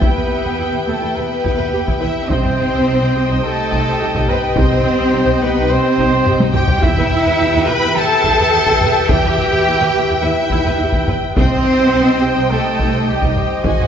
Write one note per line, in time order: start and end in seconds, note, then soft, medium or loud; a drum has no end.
0.00 0.07 E2 medium
0.00 0.87 B3 medium
0.00 2.27 E4 medium
0.00 0.07 E4 medium
0.00 2.27 G4 medium
0.00 2.26 B4 medium
0.00 0.86 B4 medium
0.00 0.87 B4 medium
0.00 2.26 E5 soft
0.00 2.27 E5 medium
0.00 2.27 G5 medium
0.00 taiko loud
0.16 0.22 E2 medium
0.16 0.22 B4 soft
0.44 0.50 E2 medium
0.44 0.50 B4 soft
0.57 0.65 E2 medium
0.57 0.63 E4 medium
0.73 0.79 E2 soft
0.73 0.79 B4 soft
0.86 0.93 E2 soft
0.86 1.16 A3 medium
0.86 0.92 G4 soft
0.86 1.17 A4 medium
0.86 1.16 A4 medium
1.00 1.08 E2 medium
1.00 1.06 E4 medium
1.15 1.23 E2 soft
1.15 2.01 B3 medium
1.15 1.21 B4 soft
1.15 2.03 B4 medium
1.15 2.02 B4 medium
1.44 1.51 E2 medium
1.44 1.50 E4 medium
1.44 taiko medium
1.58 1.64 E2 soft
1.58 1.64 B4 medium
1.72 1.78 E2 medium
1.72 1.79 G4 medium
1.87 1.93 E2 medium
1.87 1.93 E4 medium
1.87 taiko medium
2.01 2.07 E2 medium
2.01 2.29 E4 medium
2.01 2.07 B4 medium
2.01 2.31 E5 medium
2.01 2.30 E5 medium
2.29 2.36 C2 medium
2.29 3.43 C4 loud
2.29 2.36 D#4 medium
2.29 6.84 D#4 medium
2.29 6.66 G4 medium
2.29 6.63 G4 medium
2.29 3.43 C5 medium
2.29 3.44 C5 medium
2.29 6.84 C5 medium
2.29 6.66 D#5 medium
2.29 6.84 D#5 medium
2.29 6.80 G5 medium
2.29 6.63 G5 medium
2.29 taiko medium
2.44 2.51 C2 medium
2.44 2.51 C5 soft
2.44 taiko low-mid soft
2.58 taiko low-mid soft
2.73 2.78 C2 medium
2.73 2.79 C5 medium
2.87 2.93 C2 medium
2.87 2.94 D#4 medium
3.02 3.07 C2 soft
3.02 3.07 C5 medium
3.16 3.21 C2 medium
3.16 3.22 G4 medium
3.30 3.36 C2 medium
3.30 3.35 D#4 medium
3.43 3.49 C2 medium
3.43 4.27 A3 medium
3.43 4.30 A4 loud
3.43 4.27 A4 medium
3.43 3.49 C5 soft
3.72 3.78 C2 medium
3.72 3.78 D#4 medium
3.72 taiko medium
3.86 3.92 C2 medium
3.86 3.93 C5 medium
4.00 4.07 C2 medium
4.00 4.06 G4 medium
4.14 4.20 C2 medium
4.14 4.20 D#4 medium
4.14 taiko medium
4.28 4.34 C2 medium
4.28 4.57 B3 medium
4.28 4.57 B4 medium
4.28 4.58 B4 medium
4.28 4.35 C5 medium
4.28 taiko low-mid medium
4.55 4.63 C2 medium
4.55 5.42 C4 loud
4.55 4.62 D#4 medium
4.55 5.39 C5 medium
4.55 5.43 C5 medium
4.55 taiko loud
4.71 4.77 C2 medium
4.71 4.77 C5 medium
4.71 taiko low-mid soft
4.84 taiko low-mid medium
4.99 5.05 C2 medium
4.99 5.05 C5 medium
5.12 5.19 C2 medium
5.12 5.18 D#4 medium
5.25 5.32 C2 medium
5.25 5.32 C5 medium
5.40 5.48 C2 medium
5.40 5.70 B3 loud
5.40 5.47 G4 medium
5.40 5.69 B4 medium
5.40 5.71 B4 medium
5.55 5.62 C2 medium
5.55 5.61 D#4 loud
5.69 5.76 C2 medium
5.69 6.55 C4 loud
5.69 5.75 C5 medium
5.69 6.37 C5 loud
5.69 6.55 C5 medium
5.98 6.04 C2 medium
5.98 6.04 D#4 medium
5.98 taiko medium
6.12 6.18 C2 medium
6.12 6.18 C5 medium
6.26 6.32 C2 medium
6.26 6.33 G4 medium
6.26 taiko low-mid medium
6.40 6.46 C2 medium
6.40 6.46 D#4 medium
6.40 taiko high loud
6.54 6.61 C2 medium
6.54 6.82 G4 medium
6.54 6.61 C5 medium
6.54 6.84 G5 medium
6.54 6.83 G5 medium
6.54 taiko low-mid loud
6.68 taiko low medium
6.80 7.64 E2 medium
6.80 6.89 E2 medium
6.80 11.36 E4 medium
6.80 7.68 E4 loud
6.80 11.31 G4 loud
6.80 11.33 G4 medium
6.80 11.35 B4 medium
6.80 7.68 E5 medium
6.80 11.37 E5 medium
6.80 7.69 E5 medium
6.80 11.31 G5 medium
6.80 11.33 G5 medium
6.80 taiko medium
6.84 6.89 E4 medium
6.84 11.33 B4 medium
6.97 7.04 E2 medium
6.97 7.03 B4 medium
6.97 taiko low-mid soft
7.11 taiko low-mid medium
7.26 7.32 E2 medium
7.26 7.32 B4 medium
7.39 7.46 E2 medium
7.39 7.45 E4 medium
7.54 7.61 E2 medium
7.54 7.60 B4 medium
7.67 7.73 E2 medium
7.67 7.73 G4 medium
7.67 7.96 B4 loud
7.67 7.97 B5 medium
7.67 7.97 B5 loud
7.82 7.88 E2 medium
7.82 7.88 E4 medium
7.95 8.02 E2 medium
7.95 9.10 A4 loud
7.95 8.02 B4 medium
7.95 8.82 A5 loud
7.95 9.11 A5 loud
8.24 8.30 E2 medium
8.24 8.31 E4 medium
8.24 taiko medium
8.39 8.45 E2 medium
8.39 8.45 B4 medium
8.54 8.60 E2 medium
8.54 8.59 G4 medium
8.66 8.73 E2 medium
8.66 8.74 E4 medium
8.66 taiko medium
8.81 8.88 E2 medium
8.81 8.88 B4 medium
8.81 taiko low-mid medium
9.09 9.16 E2 medium
9.09 9.17 E4 medium
9.09 10.23 G4 loud
9.09 10.19 G5 loud
9.09 10.22 G5 medium
9.09 taiko loud
9.24 9.31 E2 medium
9.24 9.31 B4 medium
9.24 taiko low-mid soft
9.38 taiko low-mid medium
9.53 9.58 E2 medium
9.53 9.59 B4 medium
9.66 9.72 E2 medium
9.66 9.72 E4 medium
9.80 9.86 E2 medium
9.80 9.87 B4 medium
9.95 10.01 E2 medium
9.95 10.01 G4 medium
10.09 10.15 E2 medium
10.09 10.15 E4 medium
10.22 10.28 E2 medium
10.22 11.06 E4 medium
10.22 10.29 B4 medium
10.22 11.06 E5 medium
10.22 11.08 E5 medium
10.50 10.57 E2 medium
10.50 10.57 E4 loud
10.50 taiko medium
10.66 10.72 E2 medium
10.66 10.72 B4 medium
10.81 10.87 E2 medium
10.81 10.87 G4 medium
10.92 11.00 E2 medium
10.92 10.99 E4 medium
10.92 taiko medium
11.08 11.14 E2 medium
11.08 11.14 B4 medium
11.08 taiko low-mid medium
11.35 11.42 C2 medium
11.35 12.46 C4 loud
11.35 11.42 D#4 medium
11.35 13.87 D#4 medium
11.35 13.62 G4 medium
11.35 12.46 C5 medium
11.35 12.51 C5 medium
11.35 13.87 C5 medium
11.35 13.87 D#5 medium
11.35 13.62 G5 medium
11.35 13.63 G5 medium
11.35 taiko loud
11.51 11.57 C2 medium
11.51 11.57 C5 soft
11.51 taiko low-mid soft
11.65 taiko low-mid medium
11.78 11.84 C2 medium
11.78 11.85 C5 medium
11.93 11.99 C2 medium
11.93 11.99 D#4 medium
12.07 12.13 C2 soft
12.07 12.14 C5 soft
12.22 12.28 C2 medium
12.22 12.28 G4 medium
12.36 12.42 C2 medium
12.36 12.42 D#4 medium
12.49 12.56 C2 medium
12.49 13.06 A3 medium
12.49 13.09 A4 medium
12.49 13.08 A4 medium
12.49 12.56 C5 soft
12.79 12.84 C2 medium
12.79 12.85 D#4 medium
12.79 taiko medium
12.93 12.99 C2 medium
12.93 12.99 C5 soft
13.07 13.13 C2 medium
13.07 13.65 G3 medium
13.07 13.65 G4 medium
13.07 13.67 G4 medium
13.07 13.14 G4 medium
13.22 13.28 C2 medium
13.22 13.28 D#4 medium
13.22 taiko medium
13.36 13.42 C2 soft
13.36 13.43 C5 medium
13.36 taiko low-mid medium
13.64 13.71 G#1 medium
13.64 13.87 F#3 medium
13.64 13.87 F#4 medium
13.64 13.71 F#4 medium
13.64 13.87 F#4 medium
13.64 13.87 G#4 medium
13.64 13.87 D#5 medium
13.64 13.87 F#5 medium
13.64 13.87 G#5 medium
13.64 taiko loud
13.80 13.85 G#1 medium
13.80 13.86 C5 soft
13.80 taiko low-mid soft